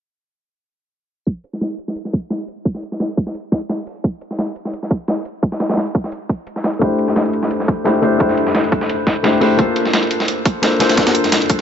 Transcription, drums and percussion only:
1.27 kick loud
1.27 closed hi-hat medium
1.44 closed hi-hat medium
1.53 snare soft
1.61 snare loud
1.61 closed hi-hat medium
1.71 closed hi-hat soft
1.79 closed hi-hat medium
1.88 snare medium
1.96 closed hi-hat medium
2.05 snare soft
2.13 kick loud
2.13 closed hi-hat medium
2.30 snare loud
2.30 closed hi-hat medium
2.48 closed hi-hat medium
2.65 kick loud
2.65 closed hi-hat medium
2.75 snare soft
2.83 closed hi-hat medium
2.92 snare soft
3.00 snare loud
3.00 closed hi-hat medium
3.09 closed hi-hat soft
3.17 kick loud
3.17 closed hi-hat medium
3.27 snare soft
3.35 closed hi-hat medium
3.52 kick medium
3.52 snare loud
3.52 closed hi-hat medium
3.69 snare loud
3.69 closed hi-hat medium
3.87 closed hi-hat medium
3.87 open hi-hat medium
4.04 kick loud
4.04 closed hi-hat medium
4.21 closed hi-hat medium
4.31 snare soft
4.39 snare loud
4.39 closed hi-hat medium
4.48 closed hi-hat soft
4.56 closed hi-hat medium
4.65 snare medium
4.73 closed hi-hat medium
4.83 snare soft
4.91 kick loud
4.91 closed hi-hat medium
5.08 snare loud
5.08 closed hi-hat medium
5.25 closed hi-hat medium
5.43 kick loud
5.43 closed hi-hat medium
5.52 snare soft
5.60 snare loud
5.60 closed hi-hat medium
5.69 snare medium
5.69 closed hi-hat soft
5.69 closed hi-hat medium
5.73 snare medium
5.73 closed hi-hat medium
5.77 snare loud
5.77 closed hi-hat medium
5.87 closed hi-hat soft
5.95 kick loud
5.95 closed hi-hat medium
6.04 snare soft
6.12 closed hi-hat medium
6.29 kick medium
6.29 closed hi-hat medium
6.47 closed hi-hat medium
6.56 snare soft
6.64 snare loud
6.64 closed hi-hat medium
6.73 closed hi-hat soft
6.81 kick loud
6.81 closed hi-hat medium
6.99 closed hi-hat medium
7.08 snare soft
7.16 snare loud
7.16 closed hi-hat medium
7.25 closed hi-hat soft
7.33 closed hi-hat medium
7.43 snare medium
7.51 closed hi-hat medium
7.60 snare soft
7.68 kick loud
7.68 closed hi-hat medium
7.85 snare loud
7.85 closed hi-hat medium
8.03 closed hi-hat medium
8.20 kick loud
8.20 closed hi-hat medium
8.29 snare soft
8.37 closed hi-hat medium
8.47 snare soft
8.55 snare loud
8.55 closed hi-hat medium
8.64 closed hi-hat soft
8.72 kick medium
8.72 closed hi-hat medium
8.81 snare soft
8.89 closed hi-hat medium
9.07 kick medium
9.07 snare loud
9.07 closed hi-hat medium
9.24 snare loud
9.24 closed hi-hat medium
9.41 closed hi-hat medium
9.41 open hi-hat medium
9.59 kick loud
9.59 closed hi-hat medium
9.76 closed hi-hat medium
9.85 snare soft
9.93 snare loud
9.93 closed hi-hat medium
10.03 closed hi-hat soft
10.11 closed hi-hat medium
10.20 snare medium
10.28 closed hi-hat medium
10.45 kick loud
10.45 closed hi-hat medium
10.63 snare loud
10.63 closed hi-hat medium
10.80 snare loud
10.80 closed hi-hat medium
10.89 snare loud
10.89 closed hi-hat medium
10.97 kick loud
10.97 snare loud
10.97 closed hi-hat medium
11.07 snare loud
11.07 closed hi-hat medium
11.15 closed hi-hat medium
11.24 snare soft
11.24 closed hi-hat soft
11.32 snare loud
11.32 closed hi-hat medium
11.42 closed hi-hat soft
11.50 kick loud
11.50 closed hi-hat medium

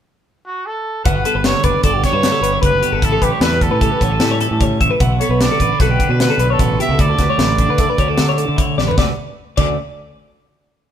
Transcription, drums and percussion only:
1.05 kick loud
1.05 closed hi-hat medium
1.25 closed hi-hat medium
1.44 snare medium
1.44 closed hi-hat medium
1.64 kick medium
1.64 closed hi-hat medium
1.83 kick medium
1.83 closed hi-hat medium
2.04 kick medium
2.04 snare soft
2.04 closed hi-hat medium
2.23 snare medium
2.23 closed hi-hat medium
2.44 closed hi-hat medium
2.63 kick medium
2.63 closed hi-hat medium
2.83 closed hi-hat medium
3.02 kick medium
3.02 closed hi-hat medium
3.22 kick medium
3.22 closed hi-hat medium
3.41 snare medium
3.41 closed hi-hat medium
3.61 kick medium
3.61 closed hi-hat soft
3.81 kick medium
3.81 closed hi-hat medium
4.01 kick medium
4.01 closed hi-hat soft
4.20 snare medium
4.20 closed hi-hat medium
4.41 closed hi-hat medium
4.61 kick medium
4.61 closed hi-hat medium
4.81 kick medium
4.81 closed hi-hat medium
5.00 kick loud
5.00 closed hi-hat medium
5.21 closed hi-hat medium
5.41 snare medium
5.41 closed hi-hat medium
5.60 kick medium
5.60 closed hi-hat soft
5.80 kick medium
5.80 snare soft
5.80 closed hi-hat medium
6.00 kick medium
6.00 closed hi-hat medium
6.20 snare medium
6.20 closed hi-hat medium
6.39 closed hi-hat medium
6.59 kick medium
6.59 closed hi-hat medium
6.80 closed hi-hat medium
6.99 kick medium
6.99 closed hi-hat medium
7.19 kick medium
7.19 snare soft
7.19 closed hi-hat medium
7.39 snare medium
7.39 closed hi-hat medium
7.58 kick medium
7.58 closed hi-hat soft
7.78 kick medium
7.78 closed hi-hat medium
7.98 kick medium
7.98 closed hi-hat soft
8.18 snare medium
8.18 closed hi-hat medium
8.38 closed hi-hat medium
8.58 kick medium
8.58 closed hi-hat medium
8.79 snare medium
8.91 floor tom medium
8.98 kick medium
8.98 snare medium
9.57 kick medium
9.57 crash medium

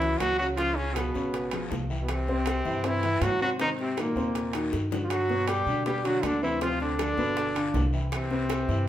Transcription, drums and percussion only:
0.02 high bongo soft
0.02 high timbale medium
0.20 high bongo soft
0.20 low bongo medium
0.20 high timbale medium
0.20 low timbale medium
0.20 short guiro medium
0.20 claves medium
0.39 short guiro medium
0.57 high bongo medium
0.57 high timbale medium
0.57 long guiro medium
0.77 high bongo soft
0.95 high bongo medium
0.95 high timbale loud
0.95 short guiro medium
0.95 claves medium
1.14 high bongo soft
1.14 short guiro medium
1.33 high bongo medium
1.33 high timbale medium
1.33 long guiro medium
1.51 high bongo soft
1.51 high timbale loud
1.51 claves soft
1.71 high bongo soft
1.71 low bongo medium
1.71 low timbale medium
1.71 short guiro medium
1.90 short guiro medium
2.09 high bongo medium
2.09 high timbale loud
2.09 long guiro medium
2.09 claves medium
2.28 high bongo soft
2.46 high bongo medium
2.46 high timbale loud
2.46 short guiro medium
2.46 claves medium
2.65 high bongo soft
2.65 short guiro medium
2.84 high bongo medium
2.84 high timbale medium
2.84 long guiro medium
3.03 high bongo soft
3.03 high timbale medium
3.22 high bongo soft
3.22 low bongo medium
3.22 high timbale medium
3.22 low timbale medium
3.22 short guiro medium
3.22 claves medium
3.40 short guiro medium
3.59 high bongo medium
3.59 high timbale medium
3.59 long guiro medium
3.79 high bongo soft
3.97 high bongo medium
3.97 high timbale medium
3.97 short guiro medium
3.97 claves medium
4.16 high bongo soft
4.16 short guiro medium
4.35 high bongo medium
4.35 high timbale medium
4.35 long guiro medium
4.53 high bongo medium
4.53 high timbale medium
4.53 claves soft
4.72 high bongo medium
4.72 short guiro medium
4.91 low bongo loud
4.91 short guiro medium
5.10 high bongo medium
5.10 high timbale loud
5.10 long guiro medium
5.10 claves medium
5.29 high bongo soft
5.48 high bongo medium
5.48 high timbale loud
5.48 short guiro medium
5.48 claves medium
5.67 high bongo soft
5.67 short guiro medium
5.86 high bongo medium
5.86 high timbale medium
5.86 long guiro medium
6.05 high bongo soft
6.05 high timbale medium
6.23 high bongo soft
6.23 low bongo medium
6.23 high timbale medium
6.23 low timbale medium
6.23 short guiro medium
6.23 claves medium
6.43 short guiro medium
6.61 high bongo medium
6.61 high timbale medium
6.61 long guiro medium
6.80 high bongo soft
6.99 high bongo medium
6.99 high timbale loud
6.99 short guiro medium
6.99 claves medium
7.18 high bongo soft
7.18 short guiro medium
7.37 high bongo medium
7.37 high timbale medium
7.37 long guiro medium
7.56 high bongo soft
7.56 high timbale medium
7.56 claves medium
7.74 high bongo soft
7.74 low bongo medium
7.74 low timbale medium
7.74 short guiro medium
7.93 short guiro medium
8.12 high bongo medium
8.12 high timbale loud
8.12 long guiro medium
8.12 claves medium
8.31 high bongo soft
8.49 high bongo medium
8.49 high timbale medium
8.49 short guiro medium
8.49 claves medium
8.69 high bongo soft
8.69 short guiro medium

